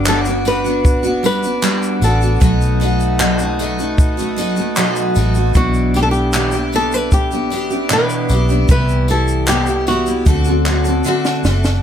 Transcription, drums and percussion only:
0.05 clap, shaker
0.25 shaker
0.45 tambourine
0.65 shaker
0.85 kick, shaker
1.04 shaker
1.24 tambourine
1.43 shaker
1.63 clap, shaker
1.83 shaker
2.02 tambourine, shaker
2.22 shaker
2.41 kick, shaker
2.61 shaker
2.81 tambourine
3.00 shaker
3.19 clap, shaker
3.39 shaker
3.59 tambourine
3.79 shaker
3.98 kick, shaker
4.18 shaker
4.38 tambourine
4.56 shaker
4.76 clap, shaker
4.96 shaker
5.15 tambourine, shaker
5.34 shaker
5.54 kick, shaker
5.74 shaker
5.94 tambourine
6.13 shaker
6.33 clap, shaker
6.51 shaker
6.73 tambourine
6.92 shaker
7.11 kick, shaker
7.32 shaker
7.52 tambourine
7.70 shaker
7.90 clap, shaker
8.10 shaker
8.29 tambourine, shaker
8.49 shaker
8.69 kick, shaker
8.89 shaker
9.08 tambourine
9.28 shaker
9.47 clap, shaker
9.66 shaker
9.87 tambourine
10.07 shaker
10.26 kick, shaker
10.45 shaker
10.66 clap, tambourine
10.85 shaker
11.04 shaker
11.25 snare, shaker
11.44 snare, shaker
11.64 snare, shaker

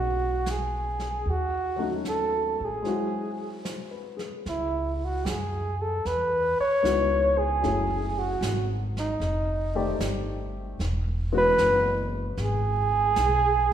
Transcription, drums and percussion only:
0.46 snare, hi-hat pedal
0.99 snare
1.26 brush sweep
2.05 snare, hi-hat pedal
2.85 brush sweep, snare
3.65 snare, hi-hat pedal
4.19 snare
4.46 brush sweep, snare
5.26 snare, hi-hat pedal
6.06 brush sweep, snare
6.85 snare, hi-hat pedal
7.64 brush sweep, snare
8.42 snare, hi-hat pedal
8.97 snare
9.21 brush sweep, snare
10.00 snare, hi-hat pedal
10.80 brush sweep, snare
11.58 snare, hi-hat pedal
12.37 brush sweep, snare
13.16 snare, hi-hat pedal

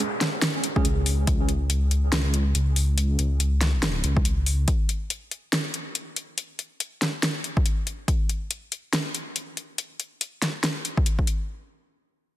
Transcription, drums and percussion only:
0.21 snare, closed hi-hat
0.42 snare, closed hi-hat
0.64 closed hi-hat
0.76 kick
0.85 closed hi-hat
1.06 open hi-hat
1.27 kick, closed hi-hat
1.49 closed hi-hat
1.70 closed hi-hat
1.91 closed hi-hat
2.12 snare, closed hi-hat
2.34 closed hi-hat
2.55 closed hi-hat
2.76 open hi-hat
2.98 closed hi-hat
3.19 closed hi-hat
3.40 closed hi-hat
3.61 snare, closed hi-hat
3.83 snare, closed hi-hat
4.04 closed hi-hat
4.17 kick
4.25 closed hi-hat
4.46 open hi-hat
4.68 kick, closed hi-hat
4.89 closed hi-hat
5.10 closed hi-hat
5.31 closed hi-hat
5.53 snare, closed hi-hat
5.74 closed hi-hat
5.95 closed hi-hat
6.16 closed hi-hat
6.38 closed hi-hat
6.59 closed hi-hat
6.80 closed hi-hat
7.02 snare, closed hi-hat
7.23 snare, closed hi-hat
7.44 closed hi-hat
7.57 kick
7.66 closed hi-hat
7.87 closed hi-hat
8.08 kick, closed hi-hat
8.29 closed hi-hat
8.51 closed hi-hat
8.72 closed hi-hat
8.93 snare, closed hi-hat
9.15 closed hi-hat
9.36 closed hi-hat
9.57 closed hi-hat
9.78 closed hi-hat
10.00 closed hi-hat
10.21 closed hi-hat
10.42 snare, closed hi-hat
10.64 snare, closed hi-hat
10.85 closed hi-hat
10.97 kick
11.06 closed hi-hat
11.19 kick
11.27 closed hi-hat

